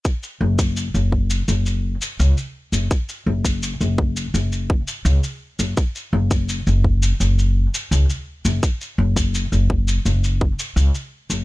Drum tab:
SH |xx-xxx-xxx-xxx-x|xx-xxx-xxx-xxx-x|xx-xxx-xxx-xxx-x|xx-xxx-xxx-xxx-x|
BD |o--o--o---------|o--o--o---o-----|o--o--o---------|o--o--o---o-----|